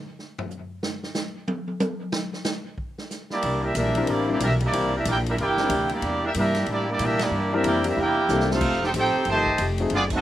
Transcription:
0.19 snare
0.38 floor tom
0.51 hi-hat pedal
0.83 snare
1.03 snare
1.15 snare, hi-hat pedal
1.48 high tom
1.68 high tom
1.80 hi-hat pedal, high tom
2.12 snare
2.33 snare
2.45 snare, hi-hat pedal
2.78 kick
2.98 snare
3.11 snare, hi-hat pedal
3.30 trombone section G3 A#3 D4, trumpet section A#3 E4 G4 D5, snare
3.42 upright bass C2, steel-string acoustic guitar C3 E3 A#3 D4, kick, ride
3.62 trombone section G3 A#3 E4, trumpet section D4 G4 A#4 E5
3.75 upright bass A#1, steel-string acoustic guitar C3 E3 A#3 D4, trombone section G3 A#3 E4, trumpet section D4 G4 A#4 E5, kick, hi-hat pedal, ride
3.95 grand piano G3 C4 D4 E4 A#4, ride
4.07 upright bass A1, steel-string acoustic guitar C3 E3 A#3 D4, trombone section G3 A#3 D4, trumpet section A#3 E4 G4 D5, kick, ride
4.27 grand piano G3 C4 D4 E4 C5, trombone section G3 A#3 D4, trumpet section A#3 E4 G4 D5
4.40 upright bass B1, steel-string acoustic guitar C3 E3 A#3 D4, trombone section G3 A#3 E4, trumpet section D4 G4 A#4 E5, kick, hi-hat pedal, ride
4.60 trombone section G3 A#3 D4, ride
4.65 trumpet section A#3 E4 G4 D5
4.72 upright bass C2, steel-string acoustic guitar C3 E3 A#3 D4, grand piano G3 C4 D4 E4 A#4, kick, ride
4.95 trombone section G3 A#3 E4, trumpet section D4 G4 A#4 E5
5.05 upright bass A#1, steel-string acoustic guitar C3 E3 A#3 D4, trombone section A#3 E4 G4, trumpet section E4 A#4 D5 G5, kick, hi-hat pedal, ride
5.26 trombone section G3 A#3 E4, trumpet section D4 G4 A#4 E5, ride
5.37 upright bass G1, steel-string acoustic guitar C3 E3 A#3 D4, trombone section A#3 E4 G4, trumpet section E4 A#4 D5 G5, kick, ride
5.57 grand piano G3 C4 D4 E4 A#4, snare
5.69 upright bass D2, steel-string acoustic guitar C3 E3 A#3 D4, kick, hi-hat pedal, ride
5.89 trombone section G3 A#3 D4, trumpet section A#3 E4 G4 D5, ride
6.02 upright bass E2, steel-string acoustic guitar C3 E3 A#3 D4, kick, ride
6.24 trombone section G3 A#3 E4, trumpet section D4 G4 A#4 E5
6.34 upright bass G2, steel-string acoustic guitar C3 E3 A#3 D4, trombone section G3 A#3 E4, trumpet section D4 G4 A#4 E5, kick, hi-hat pedal, ride
6.55 snare, ride
6.66 upright bass A2, steel-string acoustic guitar C3 E3 A#3 D4, trombone section G3 A#3 D4, kick, ride
6.71 trumpet section A#3 E4 G4 D5
6.89 trombone section G3 A#3 D4, trumpet section A#3 E4 G4 D5
6.99 upright bass A#2, steel-string acoustic guitar C3 E3 A#3 D4, trombone section G3 A#3 E4, kick, hi-hat pedal, ride
7.04 trumpet section D4 G4 A#4 E5
7.19 trombone section G3 A#3 D4, trumpet section A#3 E4 G4 D5, snare, ride
7.31 upright bass G2, steel-string acoustic guitar C3 E3 A#3 D4
7.52 grand piano G3 C4 D4 E4 A#4, trombone section G3 A#3 E4, trumpet section D4 G4 A#4 E5
7.64 upright bass F2, steel-string acoustic guitar C3 E3 A#3, trombone section A#3 E4 G4, trumpet section E4 A#4 D5 G5, kick, hi-hat pedal, ride
7.68 steel-string acoustic guitar D4
7.84 trombone section G3 A#3 E4, trumpet section D4 E5, ride
7.88 trumpet section G4 A#4
7.96 upright bass E2, steel-string acoustic guitar C3 E3, trombone section A#3 E4 G4, kick
8.01 steel-string acoustic guitar A#3 D4, trumpet section E4 A#4 D5 G5
8.29 upright bass C2, steel-string acoustic guitar C3 E3 A#3, grand piano G3 C4 D4 E4 A4, snare, hi-hat pedal
8.33 steel-string acoustic guitar D4
8.40 snare
8.50 trombone section A3 C4 F4, trumpet section D#4 A4 C5 F5, snare
8.61 upright bass F1, steel-string acoustic guitar F3 A3 D#4, kick, crash
8.65 steel-string acoustic guitar G4
8.72 snare
8.82 trombone section C4 D#4 G4, trumpet section D#4 A4 C5 G5, snare
8.93 upright bass A1, steel-string acoustic guitar F3 A3 D#4 G4, trombone section C4 D#4 G4, kick, hi-hat pedal, ride
8.98 trumpet section D#4 A4 C5 G5
9.15 muted upright bass stroke
9.25 upright bass G1, trombone section C3 D#3 A3, steel-string acoustic guitar F3 A3 D#4, kick, ride
9.29 steel-string acoustic guitar G4, trumpet section G4 C5 D#5 A5
9.46 kick
9.58 upright bass F1, steel-string acoustic guitar F3 A3 D#4 G4, kick, hi-hat pedal, ride
9.78 grand piano A3 C4 D#4 F#4 G#4, ride
9.90 upright bass F#1, steel-string acoustic guitar F#2 D#3, trombone section D4, kick, ride
9.94 steel-string acoustic guitar A3 C4, trumpet section B3 F4 G#4 D5
10.10 trombone section A3 C4 D#4, kick, crash
10.15 trumpet section C4 F#4 A4 D#5

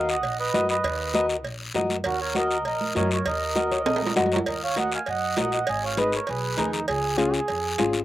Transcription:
Already playing: upright bass D#2, nylon-string guitar F#4 A#4 D#5
0.09 accordion D#5 F#5, short guiro
0.23 upright bass A#1, cowbell, high conga, long guiro
0.40 accordion B4 D#5
0.54 upright bass F#2, nylon-string guitar F#4 A#4 D#5, high conga, low timbale, short guiro
0.69 accordion B4 D#5, short guiro
0.84 upright bass D#2, cowbell, high conga, long guiro
1.14 nylon-string guitar F#4 A#4 D#5, high conga, short guiro
1.29 short guiro
1.44 upright bass A#1, cowbell, high conga, long guiro
1.74 upright bass F#2, nylon-string guitar F#4 A#4 D#5, high conga, low conga, low timbale, short guiro
1.90 high conga, short guiro
2.04 upright bass D#2, accordion F#4 A#4, cowbell, high conga, long guiro
2.21 accordion A#4 C#5
2.35 nylon-string guitar F#4 A#4 D#5, accordion A#4 D#5, high conga, short guiro
2.51 short guiro
2.65 upright bass A#1, accordion A#4 D#5, cowbell, high conga, long guiro
2.81 high conga
2.95 upright bass F#2, nylon-string guitar F#4 A#4 D#5, accordion A#4 C#5, high conga, low timbale, short guiro
3.11 accordion A#4 C#5, short guiro
3.26 upright bass D#2, accordion A#4 D#5, cowbell, high conga, long guiro
3.55 nylon-string guitar F#4 A#4 D#5, high conga, short guiro
3.71 nylon-string guitar C#5, short guiro
3.86 upright bass A#1, nylon-string guitar D#5, cowbell, high conga, high timbale, long guiro
3.96 high timbale
4.02 high conga
4.06 low timbale
4.16 upright bass F#2, nylon-string guitar F#4 A#4 D#5 F#5, high conga, low conga, low timbale, short guiro
4.26 low timbale
4.32 accordion A#4 C#5, short guiro
4.36 low timbale
4.46 upright bass D#2, accordion A#4 D#5, cowbell, long guiro
4.64 accordion C#5 F5
4.76 nylon-string guitar F#4 A#4 D#5, accordion D#5 F#5, cowbell, high conga, short guiro
4.92 accordion F5 G#5, short guiro
5.06 upright bass F#2, accordion D#5 F#5, cowbell, long guiro
5.37 upright bass A#1, nylon-string guitar F#4 A#4 D#5, accordion D#5 F#5, cowbell, high conga, low timbale, short guiro
5.52 accordion D#5 F#5, short guiro
5.67 upright bass G#1, accordion D#5 G#5, cowbell, long guiro
5.85 accordion C#5 F5
5.97 nylon-string guitar D#4 G#4 B4, accordion B4 D#5, cowbell, high conga, short guiro
6.12 accordion A#4 C#5, short guiro
6.27 upright bass B1, accordion G#4 B4, cowbell, long guiro
6.57 upright bass D#2, nylon-string guitar D#4 G#4 A#4, trombone D#4, cowbell, high conga, low conga, short guiro
6.73 low conga, short guiro
6.88 upright bass C#2, trombone G#4, cowbell, long guiro
7.17 nylon-string guitar C#4 F4 G#4, trombone F4, cowbell, high conga, short guiro
7.33 trombone G#4, short guiro
7.48 upright bass F2, cowbell, long guiro
7.78 upright bass G#1, nylon-string guitar C#4 F4 G#4, cowbell, high conga, low timbale, short guiro
7.93 short guiro

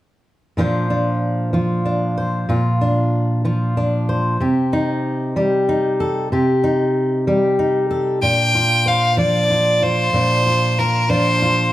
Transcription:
0.57 steel-string acoustic guitar A#2 F3 D4 F4 C5
0.90 steel-string acoustic guitar D4
1.53 steel-string acoustic guitar F3 F4
1.85 steel-string acoustic guitar D4
2.18 steel-string acoustic guitar C5
2.49 steel-string acoustic guitar A#2 F4
2.81 steel-string acoustic guitar D4
3.45 steel-string acoustic guitar F3 F4
3.77 steel-string acoustic guitar D4
4.09 steel-string acoustic guitar C5
4.40 steel-string acoustic guitar C3 G4
4.73 steel-string acoustic guitar D#4
5.36 steel-string acoustic guitar G3 G4
5.69 steel-string acoustic guitar D#4
6.00 steel-string acoustic guitar A4
6.32 steel-string acoustic guitar C3 G4
6.64 steel-string acoustic guitar D#4
7.27 steel-string acoustic guitar G3 G4
7.59 steel-string acoustic guitar D#4
7.91 steel-string acoustic guitar A4
8.22 steel-string acoustic guitar A#2 D4, fiddle G5
8.55 steel-string acoustic guitar F4
8.86 steel-string acoustic guitar C5, fiddle F5
9.17 steel-string acoustic guitar F3 D4, fiddle D5
9.50 steel-string acoustic guitar F4
9.82 steel-string acoustic guitar F4, fiddle C5
10.13 steel-string acoustic guitar A#2 D4
10.47 steel-string acoustic guitar F4
10.79 steel-string acoustic guitar F4, fiddle A#4
11.09 steel-string acoustic guitar F3 D4, fiddle C5
11.42 steel-string acoustic guitar F4

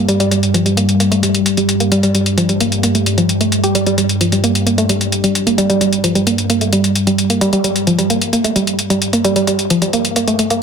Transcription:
Already playing: ambient pad G2 G3
0.08 synth arpeggio sound G3, closed hi-hat
0.20 synth arpeggio sound G3, closed hi-hat
0.31 synth arpeggio sound G3, closed hi-hat
0.43 closed hi-hat
0.54 synth arpeggio sound F3, closed hi-hat
0.66 synth arpeggio sound G3, closed hi-hat
0.77 synth arpeggio sound A#3, closed hi-hat
0.89 closed hi-hat
1.00 synth arpeggio sound A#3, closed hi-hat
1.11 synth arpeggio sound A3, closed hi-hat
1.23 synth arpeggio sound G3, closed hi-hat
1.35 closed hi-hat
1.46 closed hi-hat
1.57 synth arpeggio sound G3, closed hi-hat
1.69 closed hi-hat
1.80 synth arpeggio sound A#3, closed hi-hat
1.92 synth arpeggio sound G3, closed hi-hat
2.03 synth arpeggio sound G3, closed hi-hat
2.15 synth arpeggio sound G3, closed hi-hat
2.26 closed hi-hat
2.38 synth arpeggio sound F3, closed hi-hat
2.49 synth arpeggio sound G3, closed hi-hat
2.60 synth arpeggio sound A#3, closed hi-hat
2.72 closed hi-hat
2.83 synth arpeggio sound A#3, closed hi-hat
2.95 synth arpeggio sound A3, closed hi-hat
3.06 synth arpeggio sound G3, closed hi-hat
3.18 synth arpeggio sound F3, closed hi-hat
3.29 closed hi-hat
3.41 synth arpeggio sound A3, closed hi-hat
3.52 closed hi-hat
3.64 synth arpeggio sound G4, closed hi-hat
3.75 synth arpeggio sound G3, closed hi-hat
3.86 synth arpeggio sound G3, closed hi-hat
3.98 synth arpeggio sound G3, closed hi-hat
4.09 closed hi-hat
4.21 synth arpeggio sound F3, closed hi-hat
4.32 synth arpeggio sound G3, closed hi-hat
4.44 synth arpeggio sound A#3, closed hi-hat
4.55 closed hi-hat
4.66 synth arpeggio sound A#3, closed hi-hat
4.78 synth arpeggio sound A3, closed hi-hat
4.89 synth arpeggio sound G3, closed hi-hat
5.01 closed hi-hat
5.12 closed hi-hat
5.24 synth arpeggio sound G3, closed hi-hat
5.35 closed hi-hat
5.47 synth arpeggio sound A#3, closed hi-hat
5.58 synth arpeggio sound G3, closed hi-hat
5.70 synth arpeggio sound G3, closed hi-hat
5.81 synth arpeggio sound G3, closed hi-hat
5.93 closed hi-hat
6.04 synth arpeggio sound F3, closed hi-hat
6.15 synth arpeggio sound G3, closed hi-hat
6.27 synth arpeggio sound A#3, closed hi-hat
6.38 closed hi-hat
6.50 synth arpeggio sound A#3, closed hi-hat
6.61 synth arpeggio sound A3, closed hi-hat
6.73 synth arpeggio sound G3, closed hi-hat
6.84 closed hi-hat
6.95 closed hi-hat
7.07 synth arpeggio sound G3, closed hi-hat
7.18 closed hi-hat
7.30 synth arpeggio sound A#3, closed hi-hat
7.41 synth arpeggio sound G3, closed hi-hat
7.53 synth arpeggio sound G3, closed hi-hat
7.64 synth arpeggio sound G3, closed hi-hat
7.76 closed hi-hat
7.87 synth arpeggio sound F3, closed hi-hat
7.99 synth arpeggio sound G3, closed hi-hat
8.10 synth arpeggio sound A#3, closed hi-hat
8.22 closed hi-hat
8.33 synth arpeggio sound A#3, closed hi-hat
8.44 synth arpeggio sound A3, closed hi-hat
8.56 synth arpeggio sound G3, closed hi-hat
8.67 closed hi-hat
8.79 closed hi-hat
8.90 synth arpeggio sound G3, closed hi-hat
9.02 closed hi-hat
9.13 synth arpeggio sound A#3, closed hi-hat
9.25 synth arpeggio sound G3, closed hi-hat
9.36 synth arpeggio sound G3, closed hi-hat
9.47 synth arpeggio sound G3, closed hi-hat
9.59 closed hi-hat
9.70 synth arpeggio sound F3, closed hi-hat
9.82 synth arpeggio sound G3, closed hi-hat
9.93 synth arpeggio sound A#3, closed hi-hat
10.05 closed hi-hat
10.16 synth arpeggio sound A#3, closed hi-hat
10.28 synth arpeggio sound A3, closed hi-hat
10.39 synth arpeggio sound A3, closed hi-hat
10.50 synth arpeggio sound A#3, closed hi-hat

